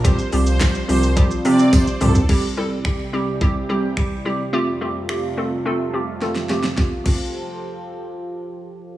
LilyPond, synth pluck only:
\new Staff \with { instrumentName = "Synth pluck" } { \time 4/4 \key f \major \tempo 4 = 107 <f g c' f' g'>8 <f g c' f' g'>8 <f g c' f' g'>8 <f g c' f' g'>8 <f g c' f' g'>8 <f g c' f' g'>8 <f g c' f' g'>8 <f g c' f' g'>8 | <g c' e' g'>8 <g c' e' a'>8 <g c' e' g'>8 <g c' e' g'>8 <g c' e' g'>8 <g c' e' g'>8 <g c' e' g'>8 <g c' e' g'>8 | <a c' f' g'>8 <a c' f' g'>8 <a c' f' g'>8 <a c' f' a'>8 <a c' f' a'>8 <a c' f' g'>8 <a c' f' a'>8 <a c' f' g'>8 | <a c' f' g'>8 <a c' f' g'>2.~ <a c' f' g'>8 | }